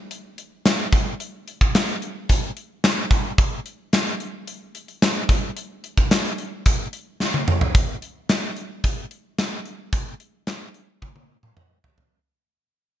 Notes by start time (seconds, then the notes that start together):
0.11 closed hi-hat
0.38 closed hi-hat
0.65 snare, closed hi-hat, tambourine
0.93 kick, closed hi-hat
1.20 closed hi-hat
1.48 closed hi-hat
1.61 kick
1.75 snare, closed hi-hat, tambourine
1.88 closed hi-hat
2.02 closed hi-hat
2.29 kick, closed hi-hat
2.57 closed hi-hat
2.84 snare, closed hi-hat, tambourine
3.11 kick, closed hi-hat
3.38 kick, closed hi-hat
3.66 closed hi-hat
3.93 snare, closed hi-hat, tambourine
4.07 closed hi-hat
4.20 closed hi-hat
4.47 closed hi-hat
4.75 closed hi-hat
4.88 closed hi-hat
5.02 snare, closed hi-hat, tambourine
5.29 kick, closed hi-hat
5.57 closed hi-hat
5.84 closed hi-hat
5.97 kick
6.11 snare, closed hi-hat, tambourine
6.25 closed hi-hat
6.38 closed hi-hat
6.66 kick, closed hi-hat
6.93 closed hi-hat
7.20 snare
7.34 high tom
7.48 mid tom
7.61 floor tom
7.75 kick, closed hi-hat
8.02 closed hi-hat
8.29 snare, closed hi-hat, tambourine
8.56 closed hi-hat
8.84 kick, closed hi-hat
9.11 closed hi-hat
9.38 snare, closed hi-hat, tambourine
9.66 closed hi-hat
9.93 kick, closed hi-hat
10.20 closed hi-hat
10.47 snare, closed hi-hat
10.74 closed hi-hat
11.02 kick, high tom
11.16 high tom
11.43 mid tom
11.57 mid tom
11.84 floor tom
11.98 floor tom